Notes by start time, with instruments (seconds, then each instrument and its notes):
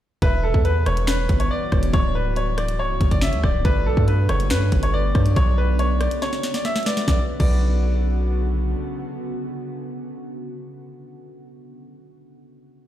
0.22 808-style bass E1, ambient pad E3 G3 B3 F#4, grand piano B4, soft synth lead E5, kick, closed hi-hat
0.43 grand piano A4
0.54 808-style bass E2, kick
0.65 grand piano B4, soft synth lead B4, closed hi-hat
0.86 808-style bass E1, grand piano C#5, cross-stick, closed hi-hat
0.97 closed hi-hat
1.07 grand piano B4, soft synth lead C#5, finger snap, snare
1.29 808-style bass G1, kick, closed hi-hat
1.40 grand piano C#5, closed hi-hat
1.51 soft synth lead B4, grand piano D5
1.72 808-style bass E1, soft synth lead C#5, kick, cross-stick, closed hi-hat
1.83 closed hi-hat
1.93 808-style bass D1, ambient pad D3 F#3 A3, grand piano C#5, soft synth lead D5, kick, closed hi-hat
2.15 grand piano B4
2.36 grand piano C#5, soft synth lead D5, closed hi-hat
2.58 grand piano D5, cross-stick, closed hi-hat
2.68 closed hi-hat
2.79 808-style bass C#1, soft synth lead C#5, grand piano C#5
3.01 808-style bass F#1, kick, closed hi-hat
3.11 808-style bass F#1, grand piano D5, kick, closed hi-hat
3.21 soft synth lead C#5, grand piano E5, finger snap, snare
3.33 808-style bass D2, closed hi-hat
3.43 808-style bass C#1, grand piano D5, soft synth lead D5, kick, cross-stick
3.65 808-style bass G1, ambient pad B3 G4, grand piano B4, soft synth lead D5, kick, closed hi-hat
3.86 808-style bass B1, grand piano A4
3.97 808-style bass G2, kick
4.08 soft synth lead B4, grand piano B4, closed hi-hat
4.29 808-style bass F#1, grand piano C#5, cross-stick, closed hi-hat
4.40 closed hi-hat
4.50 808-style bass G2, grand piano B4, soft synth lead C#5, finger snap, snare
4.72 808-style bass G1, kick, closed hi-hat
4.83 grand piano C#5, closed hi-hat
4.94 soft synth lead B4, grand piano D5
5.14 808-style bass G2, soft synth lead C#5, kick, cross-stick, closed hi-hat
5.26 closed hi-hat
5.36 808-style bass B1, ambient pad C#3 F#4, grand piano C#5, soft synth lead D5, kick, closed hi-hat
5.58 grand piano B4
5.79 grand piano C#5, soft synth lead D5, closed hi-hat
6.01 grand piano D5, cross-stick, closed hi-hat
6.11 closed hi-hat
6.22 grand piano C#5, soft synth lead C#5, snare
6.33 snare
6.43 snare, closed hi-hat
6.54 grand piano D5, snare, closed hi-hat
6.65 grand piano E5, snare
6.76 snare, closed hi-hat
6.83 soft synth lead B4, grand piano D5, snare, closed hi-hat
6.90 closed hi-hat
6.97 snare
7.08 808-style bass B1, ambient pad C#3 D3 B3 F#4, soft synth lead B4, grand piano D5, kick, snare
7.40 808-style bass B1, soft synth lead B4, grand piano D5, kick, crash